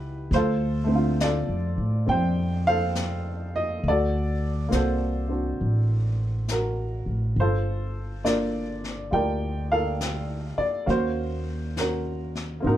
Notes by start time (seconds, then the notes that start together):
Already playing: C#2 G3 B3 C#4 E4 G4 B4 F#5
0.31 D2 C5, brush sweep, snare
0.36 F4 A4
0.84 A3 C4
0.92 D3 F4
1.20 F4 A4 D5, snare, hi-hat pedal
1.49 F2
1.78 A2
2.06 F2 C4 G5, brush sweep
2.11 C5
2.67 A4 C5 F5
2.95 snare, hi-hat pedal
3.56 D#5
3.84 D2, brush sweep
3.88 F#4 A4 D5
4.68 C2 A#3 C4, snare, hi-hat pedal
4.73 F#4 A4 C5
5.29 C4 D4 F#4
5.60 A1, brush sweep
6.48 A#4, snare, hi-hat pedal
6.52 F#4
7.06 A1
7.36 G1 C5, brush sweep
7.40 F4 A4
8.24 A#3 D4 F4 A#4 D5, snare, hi-hat pedal
8.84 snare
9.11 D2 F4 G4 A#4 D5 G5, brush sweep
9.72 A4 A#4 F5
10.01 snare, hi-hat pedal
10.58 D5, muted upright bass stroke
10.86 D#2 A#3 C#4 F#4 F5, brush sweep, snare
10.90 F#4 C5
11.77 C#4 F#4 A#4, snare, hi-hat pedal
12.35 snare
12.60 G#1 A#3 C4 D#4
12.64 F#4 A#4, brush sweep
12.69 D#4